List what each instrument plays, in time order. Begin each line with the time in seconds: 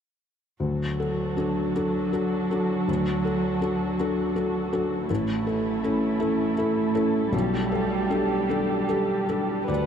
0.60 felt piano D2, cello F#3, string section D4 F#4 A4
1.00 felt piano F#4 A4
1.37 felt piano D4 F#4 A4
1.76 felt piano D4 F#4 A4
2.13 felt piano F#4 A4
2.51 felt piano D4 F#4 A4
2.88 felt piano D2
3.25 felt piano F#4 A4
3.61 felt piano D4 F#4 A4
3.99 felt piano D4 F#4 A4
4.36 felt piano F#4 A4
4.72 felt piano D4 F#4 A4
5.09 felt piano A1, cello A3, string section C#4 E4 A4
5.47 felt piano E4 A4
5.84 felt piano C#4 E4 A4
6.20 felt piano C#4 E4 A4
6.58 felt piano E4 A4
6.95 felt piano C#4 E4 A4
7.32 felt piano B1, cello G3, string section D4 G4
7.72 felt piano G4 A4
8.10 felt piano D4 G4 A4
8.49 felt piano D4 G4 A4
8.89 felt piano G4 A4
9.29 felt piano D4 G4 A4
9.68 felt piano D2 D5, cello F#3, string section A4, violin B4
9.72 string section D5 F#5